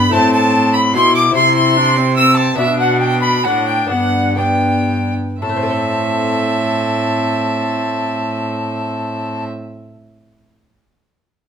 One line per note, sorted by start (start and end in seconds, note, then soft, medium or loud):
0.00 0.13 G2 medium
0.00 0.12 B3 medium
0.00 0.12 B5 loud
0.00 0.14 B5 medium
0.09 0.91 A2 medium
0.09 0.96 A2 medium
0.09 1.30 A3 medium
0.09 1.30 E4 medium
0.09 1.31 C5 medium
0.09 0.32 A5 loud
0.09 0.33 A5 loud
0.14 0.97 C4 medium
0.32 0.73 A5 loud
0.32 0.77 A5 loud
0.73 0.81 B5 medium
0.73 0.95 B5 loud
0.93 1.31 B2 medium
0.93 1.34 B2 medium
0.93 1.35 E4 medium
0.93 1.14 C6 medium
0.93 1.16 C6 loud
1.15 1.23 D6 medium
1.15 1.35 D6 loud
1.31 2.54 C3 medium
1.31 2.55 C3 medium
1.31 2.52 E4 medium
1.31 2.53 C5 medium
1.35 1.78 E4 medium
1.35 1.55 C6 loud
1.55 2.16 C6 loud
1.55 1.95 C6 loud
1.77 1.98 D4 medium
1.97 2.17 C4 medium
2.17 2.58 C4 medium
2.17 2.39 E6 loud
2.17 2.36 E6 medium
2.37 2.57 A5 medium
2.55 3.47 B2 medium
2.55 3.84 B3 medium
2.55 3.85 D4 medium
2.55 3.85 D5 medium
2.55 2.64 E5 loud
2.55 2.79 E5 loud
2.59 3.41 B2 medium
2.59 3.41 D4 medium
2.80 3.00 F#5 medium
3.00 3.06 G5 loud
3.00 3.22 G5 medium
3.21 3.46 B5 loud
3.21 3.46 B5 medium
3.44 3.86 A2 medium
3.44 3.89 A2 medium
3.44 3.94 D4 medium
3.44 3.67 F#5 medium
3.44 3.69 F#5 medium
3.67 3.89 G5 medium
3.67 3.90 G5 medium
3.86 5.11 G2 medium
3.86 5.12 G2 medium
3.86 4.34 B3 soft
3.86 4.35 D4 medium
3.86 4.36 D5 soft
3.86 4.37 F#5 medium
3.86 4.39 F#5 medium
3.92 4.39 B3 medium
4.36 5.37 B3 soft
4.36 5.14 B3 medium
4.36 5.38 D4 soft
4.36 5.38 D5 soft
4.36 5.14 G5 medium
4.36 5.13 G5 medium
5.41 9.45 A2 medium
5.41 9.93 A2 medium
5.41 9.45 C4 medium
5.41 9.45 E5 medium
5.41 9.45 A5 medium
5.49 10.00 A3 medium
5.56 10.08 C4 medium
5.63 10.14 A4 medium
5.70 10.21 C5 medium